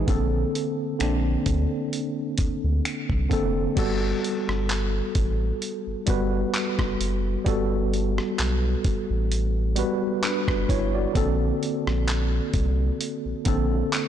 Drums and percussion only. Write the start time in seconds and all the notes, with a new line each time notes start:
0.08 kick, closed hi-hat
0.55 closed hi-hat
1.00 finger snap, closed hi-hat
1.46 kick, closed hi-hat
1.93 closed hi-hat
2.38 kick, closed hi-hat
2.85 finger snap, closed hi-hat
3.10 kick
3.31 kick, closed hi-hat
3.77 kick, closed hi-hat, crash
4.24 closed hi-hat
4.49 cross-stick
4.69 clap, closed hi-hat
5.15 kick, closed hi-hat
5.62 closed hi-hat
6.07 kick, closed hi-hat
6.55 clap, closed hi-hat
6.79 kick, cross-stick
7.01 closed hi-hat
7.46 kick, closed hi-hat
7.94 closed hi-hat
8.18 cross-stick
8.39 clap, closed hi-hat
8.84 kick, closed hi-hat
9.32 closed hi-hat
9.76 closed hi-hat
10.24 clap, closed hi-hat
10.48 kick, cross-stick
10.69 kick, closed hi-hat
11.15 kick, closed hi-hat
11.63 closed hi-hat
11.87 cross-stick
12.08 clap, closed hi-hat
12.54 kick, closed hi-hat
13.01 closed hi-hat
13.45 kick, closed hi-hat
13.93 clap, closed hi-hat